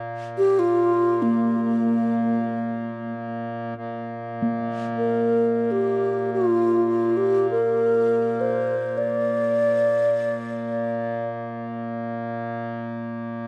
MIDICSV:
0, 0, Header, 1, 4, 480
1, 0, Start_track
1, 0, Key_signature, -2, "major"
1, 0, Tempo, 500000
1, 12936, End_track
2, 0, Start_track
2, 0, Title_t, "Alto flute"
2, 0, Program_c, 0, 73
2, 363, Note_on_c, 0, 67, 83
2, 568, Note_on_c, 0, 65, 85
2, 582, Note_off_c, 0, 67, 0
2, 1174, Note_on_c, 0, 58, 72
2, 1188, Note_off_c, 0, 65, 0
2, 3007, Note_off_c, 0, 58, 0
2, 4777, Note_on_c, 0, 70, 70
2, 5486, Note_on_c, 0, 67, 62
2, 5500, Note_off_c, 0, 70, 0
2, 6053, Note_off_c, 0, 67, 0
2, 6086, Note_on_c, 0, 65, 74
2, 6883, Note_on_c, 0, 67, 69
2, 6897, Note_off_c, 0, 65, 0
2, 7204, Note_off_c, 0, 67, 0
2, 7209, Note_on_c, 0, 70, 81
2, 8072, Note_on_c, 0, 72, 76
2, 8086, Note_off_c, 0, 70, 0
2, 8619, Note_on_c, 0, 74, 87
2, 8634, Note_off_c, 0, 72, 0
2, 10834, Note_off_c, 0, 74, 0
2, 12936, End_track
3, 0, Start_track
3, 0, Title_t, "Singing bowl"
3, 0, Program_c, 1, 14
3, 4246, Note_on_c, 1, 58, 39
3, 11182, Note_off_c, 1, 58, 0
3, 12936, End_track
4, 0, Start_track
4, 0, Title_t, "Harmonium"
4, 0, Program_c, 2, 20
4, 0, Note_on_c, 2, 46, 55
4, 3591, Note_off_c, 2, 46, 0
4, 3605, Note_on_c, 2, 46, 57
4, 12936, Note_off_c, 2, 46, 0
4, 12936, End_track
0, 0, End_of_file